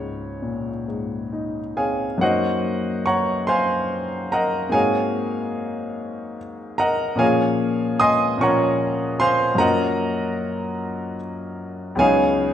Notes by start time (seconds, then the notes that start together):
Already playing: C#2 C#5
0.00 G#2
0.42 A#2
0.88 G#2
1.33 D#4
1.77 C4 G#4 C#5 F5 G#5
2.18 F#2 A#3 C#4 D#4 F#5
2.22 F#4 C5 D#5
3.06 C#5 F#5 A#5 C#6
3.47 C5 F5 G#5 C6
4.32 A#4 D#5 F#5 A#5
4.69 G#2 A#3 C4 D#4 F#4 G#5
4.74 G#4 C#5 F5
6.78 A#4 D#5 F#5 A#5
7.16 A#2 F3 A#3 C#4 F4 C#5 F5 G#5
7.20 G#4
8.00 D#5 G#5 C6 D#6
8.38 A#2 F3 A#3 C#4 C#6
8.42 F4 C#5 F#5 A#5
9.20 C5 F5 G#5 C6
9.55 F#2 F#3 A#3 C#4 A#5
9.60 F4 A#4 D#5 F#5
11.95 C#2 F#3 B3 C#4 D#4 G#5
12.00 G#4 C#5 F5